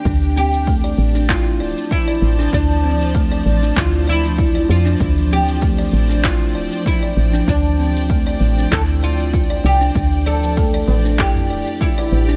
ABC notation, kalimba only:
X:1
M:4/4
L:1/16
Q:"Swing 16ths" 1/4=97
K:Dm
V:1 name="Kalimba"
D2 C z A, d2 D E z d z F d2 D | D2 C z A, d2 D E z d z F d2 D | D2 C z A, d2 D E z d z F d2 D | D2 C z A, d2 D E z d z F d2 D |
D2 d z A, d2 D E z d z F d2 D |]